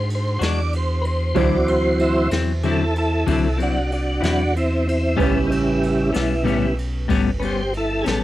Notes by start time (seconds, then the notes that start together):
Already playing: G#2 D4 F#4 G#4
0.10 ride
0.15 C5
0.39 E2 G#3 D4 F#4, snare, ride
0.46 D5
0.73 C5, ride
1.01 B4, ride
1.07 C5
1.35 D2 D3 E3 F#3 C4 E4 F#4 C5 D5, kick, ride
1.68 C5, ride
1.99 E4 C5, ride
2.31 E2 F#3 C4 E4, snare, ride
2.63 D3 F#3 C4 E4 G#4, ride
2.68 A4
2.96 E4 A4, ride
3.27 C2 D3 F#3 C4 E4 A4, kick, ride
3.57 F#3 C4 E4, ride
3.62 D4 F#4
3.92 D4 F#4, ride
4.21 E2 F#3 C4 D4 E4 F#4, ride
4.25 snare
4.56 C4 E4, ride
4.87 C4 E4, ride
5.17 A1 A2 C#3 G3 B3 C#4 G4 B4, kick, ride
5.22 E4
5.47 D#4
5.52 E4, ride
5.83 ride
6.12 B1 G3 B3 C#4, snare, ride
6.43 A2 C#3 G3 B3 C#4
6.47 ride
6.78 ride
7.08 G1 A2 G3 B3 C#4, kick, ride
7.39 G3 B3 C#4 B4, ride
7.43 G4 C5
7.74 E4 A4, ride
8.02 C#4 G#4
8.06 A1 G3 B3 A4, snare, ride